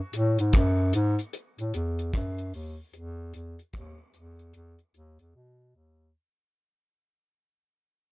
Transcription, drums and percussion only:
0.13 closed hi-hat medium
0.39 closed hi-hat medium
0.53 kick loud
0.53 cross-stick loud
0.53 closed hi-hat loud
0.93 closed hi-hat medium
1.19 closed hi-hat soft
1.33 closed hi-hat medium
1.58 closed hi-hat soft
1.74 closed hi-hat medium
1.99 closed hi-hat soft
2.13 kick loud
2.13 cross-stick loud
2.13 closed hi-hat loud
2.38 closed hi-hat soft
2.54 open hi-hat soft
2.93 closed hi-hat medium
3.34 closed hi-hat medium
3.59 closed hi-hat medium
3.73 kick loud
3.73 cross-stick loud
3.73 closed hi-hat medium
4.14 closed hi-hat medium
4.39 closed hi-hat soft
4.53 closed hi-hat medium
4.79 closed hi-hat soft
4.94 closed hi-hat medium
5.19 closed hi-hat soft

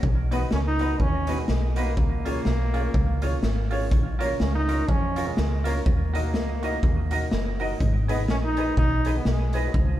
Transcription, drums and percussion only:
0.03 kick loud
0.32 closed hi-hat medium
0.51 snare loud
0.79 closed hi-hat medium
1.00 kick loud
1.27 closed hi-hat loud
1.48 snare loud
1.76 closed hi-hat medium
1.97 kick loud
2.26 closed hi-hat loud
2.45 snare loud
2.74 closed hi-hat medium
2.94 kick loud
3.22 closed hi-hat medium
3.43 snare loud
3.71 open hi-hat medium
3.91 kick loud
3.91 hi-hat pedal medium
4.21 closed hi-hat loud
4.40 snare loud
4.69 closed hi-hat medium
4.89 kick loud
5.16 closed hi-hat loud
5.37 snare loud
5.65 closed hi-hat loud
5.86 kick loud
6.15 closed hi-hat loud
6.34 snare loud
6.63 closed hi-hat medium
6.83 kick loud
7.11 closed hi-hat medium
7.31 snare loud
7.60 open hi-hat medium
7.80 kick loud
7.80 hi-hat pedal medium
8.09 closed hi-hat loud
8.28 snare loud
8.57 closed hi-hat medium
8.77 kick loud
9.05 closed hi-hat medium
9.25 snare loud
9.53 closed hi-hat medium
9.74 kick loud

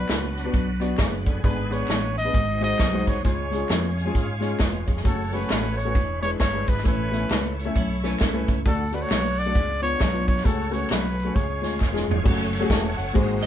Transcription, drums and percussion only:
0.08 snare loud
0.08 clap medium
0.08 closed hi-hat medium
0.08 tambourine medium
0.36 closed hi-hat medium
0.36 tambourine soft
0.52 kick medium
0.52 closed hi-hat medium
0.52 tambourine medium
0.81 closed hi-hat medium
0.81 tambourine medium
0.98 kick medium
0.98 snare loud
0.98 clap medium
0.98 closed hi-hat medium
0.98 tambourine medium
1.26 kick medium
1.26 closed hi-hat medium
1.26 tambourine soft
1.41 kick loud
1.41 closed hi-hat medium
1.41 tambourine medium
1.70 closed hi-hat medium
1.70 tambourine soft
1.88 snare loud
1.88 clap medium
1.88 closed hi-hat medium
1.88 tambourine medium
2.16 closed hi-hat medium
2.16 tambourine soft
2.33 kick medium
2.33 closed hi-hat medium
2.33 tambourine medium
2.61 closed hi-hat medium
2.61 tambourine medium
2.79 kick medium
2.79 snare loud
2.79 clap medium
2.79 closed hi-hat medium
2.79 tambourine medium
3.07 kick medium
3.07 closed hi-hat medium
3.07 tambourine medium
3.23 kick medium
3.23 closed hi-hat medium
3.23 tambourine medium
3.51 closed hi-hat medium
3.51 tambourine soft
3.69 snare loud
3.69 clap medium
3.69 closed hi-hat medium
3.69 tambourine medium
3.98 closed hi-hat medium
3.98 tambourine soft
4.14 kick medium
4.14 closed hi-hat medium
4.14 tambourine medium
4.42 closed hi-hat medium
4.42 tambourine medium
4.59 kick medium
4.59 snare loud
4.59 clap medium
4.59 closed hi-hat medium
4.59 tambourine medium
4.87 kick medium
4.87 closed hi-hat medium
4.87 tambourine soft
4.97 snare soft
5.04 kick medium
5.04 closed hi-hat medium
5.04 tambourine medium
5.32 closed hi-hat medium
5.32 tambourine soft
5.50 snare loud
5.50 clap medium
5.50 closed hi-hat medium
5.50 tambourine medium
5.78 closed hi-hat medium
5.78 tambourine medium
5.94 kick medium
5.94 closed hi-hat medium
5.94 tambourine medium
6.23 closed hi-hat medium
6.23 tambourine medium
6.40 kick medium
6.40 snare medium
6.40 clap medium
6.40 closed hi-hat medium
6.40 tambourine medium
6.67 kick medium
6.67 closed hi-hat medium
6.67 tambourine soft
6.77 snare soft
6.85 kick medium
6.85 closed hi-hat medium
6.85 tambourine medium
7.12 closed hi-hat medium
7.12 tambourine soft
7.31 snare loud
7.31 clap medium
7.31 closed hi-hat medium
7.31 tambourine medium
7.59 closed hi-hat medium
7.59 tambourine soft
7.74 kick medium
7.74 closed hi-hat medium
7.74 tambourine medium
8.03 snare soft
8.03 closed hi-hat medium
8.03 tambourine medium
8.20 kick medium
8.20 snare loud
8.20 clap medium
8.20 closed hi-hat medium
8.20 tambourine medium
8.47 kick medium
8.47 closed hi-hat medium
8.47 tambourine soft
8.63 kick loud
8.63 closed hi-hat medium
8.63 tambourine medium
8.92 closed hi-hat medium
8.92 tambourine soft
9.10 snare loud
9.10 clap medium
9.10 closed hi-hat medium
9.10 tambourine loud
9.38 closed hi-hat medium
9.38 tambourine soft
9.54 kick medium
9.54 closed hi-hat medium
9.54 tambourine medium
9.83 closed hi-hat medium
9.83 tambourine medium
10.00 kick medium
10.00 snare loud
10.00 clap medium
10.00 closed hi-hat medium
10.00 tambourine loud
10.28 kick medium
10.28 closed hi-hat medium
10.28 tambourine medium
10.37 snare soft
10.44 kick medium
10.44 closed hi-hat medium
10.44 tambourine medium
10.72 closed hi-hat medium
10.72 tambourine soft
10.90 snare loud
10.90 clap medium
10.90 closed hi-hat medium
10.90 tambourine medium
11.17 closed hi-hat medium
11.17 tambourine soft
11.34 kick medium
11.34 closed hi-hat medium
11.34 tambourine medium
11.63 snare soft
11.63 closed hi-hat medium
11.63 tambourine medium
11.80 kick medium
11.80 snare soft
11.80 clap medium
11.80 tambourine medium
11.96 snare medium
12.08 floor tom medium
12.08 tambourine soft
12.26 kick loud
12.26 crash loud
12.53 ride medium
12.70 kick medium
12.70 snare loud
12.70 ride medium
12.99 ride medium
13.15 kick medium
13.15 ride medium
13.43 ride medium

